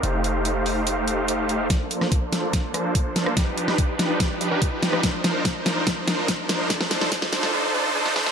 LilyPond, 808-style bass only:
\new Staff \with { instrumentName = "808-style bass" } { \clef bass \time 4/4 \key bes \major \tempo 4 = 144 f,,1 | bes,,2~ bes,,8 bes,,4. | r2 r8 g,,16 g,,4~ g,,16 | c,2 c,2 |
r1 | }